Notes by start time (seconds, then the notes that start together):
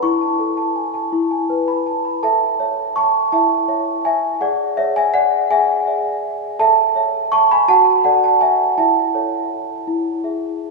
0.03 E4 C#6
0.21 A5
0.39 A4
0.57 A5
0.76 G#5
0.94 A5
1.13 E4
1.31 G#5
1.50 B4
1.68 B5
1.86 A5
2.05 B5
2.23 A4 E5 A5
2.59 C#5 E5
2.96 A5 C#6
3.32 E4 E5 A5
3.68 C#5 E5
4.05 E5 G#5
4.41 G#4 D5 F#5
4.77 C#5 D5 E5
4.96 E5 G#5
5.14 D5 F#5
5.50 G#4 E5 G#5
5.87 D5 E5
6.59 A4 E5 A5
6.96 C#5 E5
7.32 A5 C#6
7.51 G#5 B5
7.68 F#4 F#5 A5
8.04 A4 D5 F#5
8.24 F#5 A5
8.41 E5 G#5
8.78 E4 E5 A5
9.14 A4 C#5
9.87 E4
10.24 G#4 E5